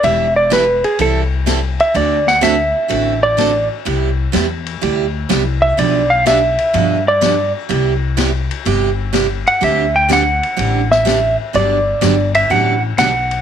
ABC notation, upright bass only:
X:1
M:4/4
L:1/8
Q:"Swing" 1/4=125
K:G
V:1 name="Upright bass" clef=bass
E,,,4 C,,4 | D,,4 A,,,4 | C,,2 E,,2 D,,2 C,,2 | B,,,4 G,,4 |
C,,4 G,,,4 | D,,4 A,,,4 | G,,,2 G,,,2 A,,,2 B,,,2 |]